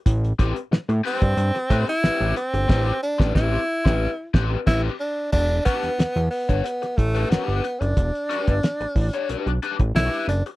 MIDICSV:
0, 0, Header, 1, 6, 480
1, 0, Start_track
1, 0, Key_signature, 1, "minor"
1, 0, Tempo, 660066
1, 39, Time_signature, 4, 2, 24, 8
1, 7679, End_track
2, 0, Start_track
2, 0, Title_t, "Overdriven electric guitar"
2, 0, Program_c, 0, 29
2, 282, Note_on_c, 0, 60, 73
2, 288, Note_on_c, 0, 67, 90
2, 290, Note_on_c, 0, 71, 81
2, 390, Note_off_c, 0, 60, 0
2, 393, Note_off_c, 0, 67, 0
2, 394, Note_off_c, 0, 71, 0
2, 754, Note_on_c, 0, 60, 88
2, 761, Note_on_c, 0, 67, 97
2, 762, Note_on_c, 0, 71, 90
2, 866, Note_off_c, 0, 60, 0
2, 869, Note_off_c, 0, 67, 0
2, 870, Note_off_c, 0, 71, 0
2, 1239, Note_on_c, 0, 60, 85
2, 1242, Note_on_c, 0, 67, 104
2, 1249, Note_on_c, 0, 71, 112
2, 1348, Note_off_c, 0, 60, 0
2, 1349, Note_off_c, 0, 67, 0
2, 1353, Note_off_c, 0, 71, 0
2, 1479, Note_on_c, 0, 60, 84
2, 1485, Note_on_c, 0, 67, 80
2, 1488, Note_on_c, 0, 71, 78
2, 1700, Note_off_c, 0, 60, 0
2, 1703, Note_off_c, 0, 67, 0
2, 1704, Note_off_c, 0, 71, 0
2, 1949, Note_on_c, 0, 60, 101
2, 1958, Note_on_c, 0, 67, 115
2, 1959, Note_on_c, 0, 71, 105
2, 2117, Note_off_c, 0, 60, 0
2, 2122, Note_off_c, 0, 67, 0
2, 2123, Note_off_c, 0, 71, 0
2, 2316, Note_on_c, 0, 60, 101
2, 2322, Note_on_c, 0, 67, 89
2, 2325, Note_on_c, 0, 71, 94
2, 2415, Note_off_c, 0, 60, 0
2, 2418, Note_off_c, 0, 67, 0
2, 2420, Note_off_c, 0, 71, 0
2, 2430, Note_on_c, 0, 60, 111
2, 2435, Note_on_c, 0, 67, 113
2, 2437, Note_on_c, 0, 71, 115
2, 2598, Note_off_c, 0, 60, 0
2, 2601, Note_off_c, 0, 67, 0
2, 2602, Note_off_c, 0, 71, 0
2, 2798, Note_on_c, 0, 60, 92
2, 2803, Note_on_c, 0, 67, 100
2, 2811, Note_on_c, 0, 71, 103
2, 2961, Note_off_c, 0, 60, 0
2, 2963, Note_off_c, 0, 67, 0
2, 2968, Note_off_c, 0, 71, 0
2, 3154, Note_on_c, 0, 60, 106
2, 3160, Note_on_c, 0, 67, 91
2, 3162, Note_on_c, 0, 71, 98
2, 3320, Note_off_c, 0, 60, 0
2, 3323, Note_off_c, 0, 67, 0
2, 3325, Note_off_c, 0, 71, 0
2, 3391, Note_on_c, 0, 60, 94
2, 3396, Note_on_c, 0, 67, 96
2, 3402, Note_on_c, 0, 71, 88
2, 3558, Note_off_c, 0, 60, 0
2, 3561, Note_off_c, 0, 67, 0
2, 3564, Note_off_c, 0, 71, 0
2, 4112, Note_on_c, 0, 62, 73
2, 4116, Note_on_c, 0, 67, 80
2, 4119, Note_on_c, 0, 71, 80
2, 4265, Note_off_c, 0, 62, 0
2, 4266, Note_off_c, 0, 67, 0
2, 4268, Note_off_c, 0, 71, 0
2, 4718, Note_on_c, 0, 73, 76
2, 4726, Note_on_c, 0, 67, 63
2, 4728, Note_on_c, 0, 62, 52
2, 4818, Note_off_c, 0, 73, 0
2, 4821, Note_off_c, 0, 67, 0
2, 4822, Note_off_c, 0, 62, 0
2, 5197, Note_on_c, 0, 71, 83
2, 5204, Note_on_c, 0, 67, 74
2, 5208, Note_on_c, 0, 62, 80
2, 5297, Note_off_c, 0, 71, 0
2, 5301, Note_off_c, 0, 67, 0
2, 5303, Note_off_c, 0, 62, 0
2, 5313, Note_on_c, 0, 61, 74
2, 5318, Note_on_c, 0, 66, 80
2, 5323, Note_on_c, 0, 70, 82
2, 5407, Note_off_c, 0, 61, 0
2, 5407, Note_on_c, 0, 62, 74
2, 5412, Note_off_c, 0, 66, 0
2, 5412, Note_on_c, 0, 67, 80
2, 5418, Note_off_c, 0, 70, 0
2, 5418, Note_on_c, 0, 71, 82
2, 5536, Note_off_c, 0, 62, 0
2, 5538, Note_off_c, 0, 67, 0
2, 5541, Note_off_c, 0, 71, 0
2, 6032, Note_on_c, 0, 62, 83
2, 6038, Note_on_c, 0, 67, 90
2, 6043, Note_on_c, 0, 71, 97
2, 6185, Note_off_c, 0, 62, 0
2, 6188, Note_off_c, 0, 67, 0
2, 6191, Note_off_c, 0, 71, 0
2, 6645, Note_on_c, 0, 73, 81
2, 6648, Note_on_c, 0, 67, 71
2, 6655, Note_on_c, 0, 62, 75
2, 6742, Note_off_c, 0, 73, 0
2, 6744, Note_off_c, 0, 67, 0
2, 6747, Note_off_c, 0, 62, 0
2, 6757, Note_on_c, 0, 62, 70
2, 6763, Note_on_c, 0, 67, 92
2, 6768, Note_on_c, 0, 71, 100
2, 6885, Note_off_c, 0, 71, 0
2, 6890, Note_off_c, 0, 67, 0
2, 6908, Note_off_c, 0, 62, 0
2, 7001, Note_on_c, 0, 62, 70
2, 7005, Note_on_c, 0, 67, 74
2, 7011, Note_on_c, 0, 71, 72
2, 7085, Note_off_c, 0, 62, 0
2, 7087, Note_off_c, 0, 67, 0
2, 7091, Note_off_c, 0, 71, 0
2, 7237, Note_on_c, 0, 61, 76
2, 7241, Note_on_c, 0, 66, 82
2, 7244, Note_on_c, 0, 70, 88
2, 7332, Note_off_c, 0, 61, 0
2, 7332, Note_on_c, 0, 62, 76
2, 7335, Note_off_c, 0, 66, 0
2, 7335, Note_on_c, 0, 67, 82
2, 7339, Note_off_c, 0, 70, 0
2, 7339, Note_on_c, 0, 71, 88
2, 7460, Note_off_c, 0, 62, 0
2, 7462, Note_off_c, 0, 67, 0
2, 7463, Note_off_c, 0, 71, 0
2, 7679, End_track
3, 0, Start_track
3, 0, Title_t, "Tenor saxophone"
3, 0, Program_c, 1, 66
3, 774, Note_on_c, 1, 60, 103
3, 1343, Note_off_c, 1, 60, 0
3, 1373, Note_on_c, 1, 64, 113
3, 1696, Note_off_c, 1, 64, 0
3, 1723, Note_on_c, 1, 60, 91
3, 2170, Note_off_c, 1, 60, 0
3, 2203, Note_on_c, 1, 62, 101
3, 2423, Note_off_c, 1, 62, 0
3, 2439, Note_on_c, 1, 64, 102
3, 3128, Note_off_c, 1, 64, 0
3, 3395, Note_on_c, 1, 64, 100
3, 3503, Note_off_c, 1, 64, 0
3, 3637, Note_on_c, 1, 62, 94
3, 3859, Note_off_c, 1, 62, 0
3, 3870, Note_on_c, 1, 62, 119
3, 4096, Note_off_c, 1, 62, 0
3, 4110, Note_on_c, 1, 59, 102
3, 4563, Note_off_c, 1, 59, 0
3, 4587, Note_on_c, 1, 59, 96
3, 4814, Note_off_c, 1, 59, 0
3, 4827, Note_on_c, 1, 59, 88
3, 5070, Note_on_c, 1, 57, 98
3, 5081, Note_off_c, 1, 59, 0
3, 5306, Note_on_c, 1, 59, 88
3, 5317, Note_off_c, 1, 57, 0
3, 5672, Note_on_c, 1, 62, 85
3, 5683, Note_off_c, 1, 59, 0
3, 6920, Note_off_c, 1, 62, 0
3, 7242, Note_on_c, 1, 64, 113
3, 7463, Note_off_c, 1, 64, 0
3, 7480, Note_on_c, 1, 62, 88
3, 7588, Note_off_c, 1, 62, 0
3, 7679, End_track
4, 0, Start_track
4, 0, Title_t, "Analog synth bass"
4, 0, Program_c, 2, 38
4, 42, Note_on_c, 2, 33, 126
4, 241, Note_off_c, 2, 33, 0
4, 283, Note_on_c, 2, 33, 88
4, 387, Note_off_c, 2, 33, 0
4, 519, Note_on_c, 2, 45, 55
4, 569, Note_off_c, 2, 45, 0
4, 646, Note_on_c, 2, 45, 100
4, 740, Note_off_c, 2, 45, 0
4, 887, Note_on_c, 2, 43, 96
4, 980, Note_off_c, 2, 43, 0
4, 996, Note_on_c, 2, 43, 92
4, 1103, Note_off_c, 2, 43, 0
4, 1237, Note_on_c, 2, 45, 104
4, 1343, Note_off_c, 2, 45, 0
4, 1481, Note_on_c, 2, 33, 50
4, 1530, Note_off_c, 2, 33, 0
4, 1604, Note_on_c, 2, 33, 101
4, 1698, Note_off_c, 2, 33, 0
4, 1845, Note_on_c, 2, 31, 85
4, 1938, Note_off_c, 2, 31, 0
4, 1958, Note_on_c, 2, 33, 114
4, 2123, Note_off_c, 2, 33, 0
4, 2325, Note_on_c, 2, 33, 115
4, 2420, Note_off_c, 2, 33, 0
4, 2438, Note_on_c, 2, 33, 97
4, 2602, Note_off_c, 2, 33, 0
4, 2803, Note_on_c, 2, 33, 103
4, 2963, Note_off_c, 2, 33, 0
4, 3156, Note_on_c, 2, 33, 103
4, 3321, Note_off_c, 2, 33, 0
4, 3395, Note_on_c, 2, 33, 96
4, 3561, Note_off_c, 2, 33, 0
4, 3874, Note_on_c, 2, 28, 115
4, 4075, Note_off_c, 2, 28, 0
4, 4241, Note_on_c, 2, 40, 46
4, 4286, Note_off_c, 2, 40, 0
4, 4353, Note_on_c, 2, 40, 47
4, 4404, Note_off_c, 2, 40, 0
4, 4479, Note_on_c, 2, 40, 101
4, 4574, Note_off_c, 2, 40, 0
4, 4721, Note_on_c, 2, 31, 95
4, 4816, Note_off_c, 2, 31, 0
4, 5075, Note_on_c, 2, 33, 96
4, 5275, Note_off_c, 2, 33, 0
4, 5311, Note_on_c, 2, 31, 50
4, 5363, Note_off_c, 2, 31, 0
4, 5441, Note_on_c, 2, 31, 95
4, 5536, Note_off_c, 2, 31, 0
4, 5680, Note_on_c, 2, 30, 91
4, 5775, Note_off_c, 2, 30, 0
4, 5794, Note_on_c, 2, 28, 125
4, 5901, Note_off_c, 2, 28, 0
4, 6165, Note_on_c, 2, 31, 97
4, 6258, Note_off_c, 2, 31, 0
4, 6403, Note_on_c, 2, 33, 48
4, 6448, Note_off_c, 2, 33, 0
4, 6512, Note_on_c, 2, 33, 98
4, 6620, Note_off_c, 2, 33, 0
4, 6758, Note_on_c, 2, 35, 48
4, 6808, Note_off_c, 2, 35, 0
4, 6883, Note_on_c, 2, 35, 76
4, 6978, Note_off_c, 2, 35, 0
4, 7122, Note_on_c, 2, 33, 93
4, 7218, Note_off_c, 2, 33, 0
4, 7235, Note_on_c, 2, 35, 87
4, 7342, Note_off_c, 2, 35, 0
4, 7474, Note_on_c, 2, 30, 95
4, 7582, Note_off_c, 2, 30, 0
4, 7679, End_track
5, 0, Start_track
5, 0, Title_t, "Muted overdriven electric guitar strokes"
5, 522, Note_on_c, 9, 29, 56
5, 595, Note_off_c, 9, 29, 0
5, 647, Note_on_c, 9, 29, 48
5, 719, Note_off_c, 9, 29, 0
5, 887, Note_on_c, 9, 29, 43
5, 960, Note_off_c, 9, 29, 0
5, 997, Note_on_c, 9, 29, 38
5, 1070, Note_off_c, 9, 29, 0
5, 1125, Note_on_c, 9, 29, 49
5, 1198, Note_off_c, 9, 29, 0
5, 1368, Note_on_c, 9, 29, 47
5, 1441, Note_off_c, 9, 29, 0
5, 1719, Note_on_c, 9, 29, 45
5, 1791, Note_off_c, 9, 29, 0
5, 1844, Note_on_c, 9, 29, 48
5, 1917, Note_off_c, 9, 29, 0
5, 4354, Note_on_c, 9, 29, 41
5, 4427, Note_off_c, 9, 29, 0
5, 4484, Note_on_c, 9, 29, 42
5, 4557, Note_off_c, 9, 29, 0
5, 4834, Note_on_c, 9, 29, 42
5, 4907, Note_off_c, 9, 29, 0
5, 4960, Note_on_c, 9, 29, 47
5, 5032, Note_off_c, 9, 29, 0
5, 5555, Note_on_c, 9, 29, 45
5, 5628, Note_off_c, 9, 29, 0
5, 5678, Note_on_c, 9, 29, 51
5, 5751, Note_off_c, 9, 29, 0
5, 6276, Note_on_c, 9, 29, 43
5, 6349, Note_off_c, 9, 29, 0
5, 6404, Note_on_c, 9, 29, 46
5, 6477, Note_off_c, 9, 29, 0
5, 6894, Note_on_c, 9, 29, 43
5, 6966, Note_off_c, 9, 29, 0
5, 7125, Note_on_c, 9, 29, 59
5, 7198, Note_off_c, 9, 29, 0
5, 7481, Note_on_c, 9, 29, 36
5, 7553, Note_off_c, 9, 29, 0
5, 7609, Note_on_c, 9, 29, 45
5, 7679, Note_off_c, 9, 29, 0
5, 7679, End_track
6, 0, Start_track
6, 0, Title_t, "Drums"
6, 44, Note_on_c, 9, 36, 120
6, 47, Note_on_c, 9, 42, 91
6, 117, Note_off_c, 9, 36, 0
6, 120, Note_off_c, 9, 42, 0
6, 177, Note_on_c, 9, 42, 42
6, 250, Note_off_c, 9, 42, 0
6, 285, Note_on_c, 9, 36, 110
6, 287, Note_on_c, 9, 42, 87
6, 358, Note_off_c, 9, 36, 0
6, 360, Note_off_c, 9, 42, 0
6, 409, Note_on_c, 9, 42, 53
6, 481, Note_off_c, 9, 42, 0
6, 530, Note_on_c, 9, 38, 105
6, 603, Note_off_c, 9, 38, 0
6, 651, Note_on_c, 9, 42, 38
6, 723, Note_off_c, 9, 42, 0
6, 764, Note_on_c, 9, 46, 84
6, 837, Note_off_c, 9, 46, 0
6, 885, Note_on_c, 9, 42, 62
6, 886, Note_on_c, 9, 36, 98
6, 958, Note_off_c, 9, 42, 0
6, 959, Note_off_c, 9, 36, 0
6, 999, Note_on_c, 9, 42, 103
6, 1072, Note_off_c, 9, 42, 0
6, 1128, Note_on_c, 9, 42, 36
6, 1133, Note_on_c, 9, 38, 34
6, 1201, Note_off_c, 9, 42, 0
6, 1206, Note_off_c, 9, 38, 0
6, 1238, Note_on_c, 9, 36, 102
6, 1240, Note_on_c, 9, 42, 84
6, 1311, Note_off_c, 9, 36, 0
6, 1313, Note_off_c, 9, 42, 0
6, 1362, Note_on_c, 9, 42, 48
6, 1434, Note_off_c, 9, 42, 0
6, 1482, Note_on_c, 9, 38, 105
6, 1555, Note_off_c, 9, 38, 0
6, 1610, Note_on_c, 9, 42, 33
6, 1683, Note_off_c, 9, 42, 0
6, 1718, Note_on_c, 9, 42, 84
6, 1790, Note_off_c, 9, 42, 0
6, 1846, Note_on_c, 9, 42, 53
6, 1918, Note_off_c, 9, 42, 0
6, 1958, Note_on_c, 9, 36, 121
6, 1958, Note_on_c, 9, 49, 84
6, 1965, Note_on_c, 9, 38, 105
6, 2031, Note_off_c, 9, 36, 0
6, 2031, Note_off_c, 9, 49, 0
6, 2037, Note_off_c, 9, 38, 0
6, 2325, Note_on_c, 9, 36, 125
6, 2330, Note_on_c, 9, 38, 113
6, 2398, Note_off_c, 9, 36, 0
6, 2403, Note_off_c, 9, 38, 0
6, 2438, Note_on_c, 9, 36, 109
6, 2442, Note_on_c, 9, 38, 105
6, 2510, Note_off_c, 9, 36, 0
6, 2515, Note_off_c, 9, 38, 0
6, 2804, Note_on_c, 9, 36, 104
6, 2809, Note_on_c, 9, 38, 111
6, 2877, Note_off_c, 9, 36, 0
6, 2882, Note_off_c, 9, 38, 0
6, 3156, Note_on_c, 9, 36, 109
6, 3161, Note_on_c, 9, 38, 113
6, 3229, Note_off_c, 9, 36, 0
6, 3234, Note_off_c, 9, 38, 0
6, 3393, Note_on_c, 9, 49, 85
6, 3395, Note_on_c, 9, 36, 101
6, 3400, Note_on_c, 9, 38, 105
6, 3466, Note_off_c, 9, 49, 0
6, 3468, Note_off_c, 9, 36, 0
6, 3473, Note_off_c, 9, 38, 0
6, 3873, Note_on_c, 9, 49, 96
6, 3875, Note_on_c, 9, 36, 112
6, 3946, Note_off_c, 9, 49, 0
6, 3948, Note_off_c, 9, 36, 0
6, 4117, Note_on_c, 9, 36, 104
6, 4117, Note_on_c, 9, 42, 93
6, 4190, Note_off_c, 9, 36, 0
6, 4190, Note_off_c, 9, 42, 0
6, 4241, Note_on_c, 9, 42, 49
6, 4313, Note_off_c, 9, 42, 0
6, 4358, Note_on_c, 9, 42, 92
6, 4364, Note_on_c, 9, 38, 101
6, 4431, Note_off_c, 9, 42, 0
6, 4437, Note_off_c, 9, 38, 0
6, 4484, Note_on_c, 9, 42, 35
6, 4557, Note_off_c, 9, 42, 0
6, 4597, Note_on_c, 9, 46, 80
6, 4670, Note_off_c, 9, 46, 0
6, 4721, Note_on_c, 9, 36, 84
6, 4721, Note_on_c, 9, 42, 59
6, 4794, Note_off_c, 9, 36, 0
6, 4794, Note_off_c, 9, 42, 0
6, 4839, Note_on_c, 9, 42, 98
6, 4912, Note_off_c, 9, 42, 0
6, 4965, Note_on_c, 9, 42, 38
6, 4970, Note_on_c, 9, 38, 33
6, 5038, Note_off_c, 9, 42, 0
6, 5043, Note_off_c, 9, 38, 0
6, 5075, Note_on_c, 9, 36, 93
6, 5081, Note_on_c, 9, 42, 76
6, 5148, Note_off_c, 9, 36, 0
6, 5153, Note_off_c, 9, 42, 0
6, 5203, Note_on_c, 9, 42, 56
6, 5276, Note_off_c, 9, 42, 0
6, 5321, Note_on_c, 9, 42, 99
6, 5325, Note_on_c, 9, 38, 106
6, 5394, Note_off_c, 9, 42, 0
6, 5398, Note_off_c, 9, 38, 0
6, 5448, Note_on_c, 9, 42, 30
6, 5521, Note_off_c, 9, 42, 0
6, 5557, Note_on_c, 9, 42, 80
6, 5630, Note_off_c, 9, 42, 0
6, 5684, Note_on_c, 9, 42, 51
6, 5756, Note_off_c, 9, 42, 0
6, 5796, Note_on_c, 9, 36, 119
6, 5798, Note_on_c, 9, 42, 85
6, 5868, Note_off_c, 9, 36, 0
6, 5871, Note_off_c, 9, 42, 0
6, 5927, Note_on_c, 9, 42, 38
6, 6000, Note_off_c, 9, 42, 0
6, 6040, Note_on_c, 9, 42, 94
6, 6113, Note_off_c, 9, 42, 0
6, 6162, Note_on_c, 9, 42, 50
6, 6165, Note_on_c, 9, 36, 91
6, 6235, Note_off_c, 9, 42, 0
6, 6238, Note_off_c, 9, 36, 0
6, 6278, Note_on_c, 9, 42, 90
6, 6284, Note_on_c, 9, 38, 103
6, 6351, Note_off_c, 9, 42, 0
6, 6356, Note_off_c, 9, 38, 0
6, 6405, Note_on_c, 9, 42, 39
6, 6477, Note_off_c, 9, 42, 0
6, 6514, Note_on_c, 9, 36, 99
6, 6514, Note_on_c, 9, 46, 71
6, 6587, Note_off_c, 9, 36, 0
6, 6587, Note_off_c, 9, 46, 0
6, 6641, Note_on_c, 9, 42, 61
6, 6714, Note_off_c, 9, 42, 0
6, 6758, Note_on_c, 9, 42, 99
6, 6831, Note_off_c, 9, 42, 0
6, 6885, Note_on_c, 9, 42, 37
6, 6958, Note_off_c, 9, 42, 0
6, 6999, Note_on_c, 9, 42, 73
6, 7072, Note_off_c, 9, 42, 0
6, 7122, Note_on_c, 9, 42, 52
6, 7124, Note_on_c, 9, 36, 89
6, 7195, Note_off_c, 9, 42, 0
6, 7197, Note_off_c, 9, 36, 0
6, 7242, Note_on_c, 9, 42, 101
6, 7246, Note_on_c, 9, 38, 113
6, 7315, Note_off_c, 9, 42, 0
6, 7319, Note_off_c, 9, 38, 0
6, 7369, Note_on_c, 9, 42, 32
6, 7442, Note_off_c, 9, 42, 0
6, 7481, Note_on_c, 9, 42, 86
6, 7554, Note_off_c, 9, 42, 0
6, 7606, Note_on_c, 9, 42, 52
6, 7679, Note_off_c, 9, 42, 0
6, 7679, End_track
0, 0, End_of_file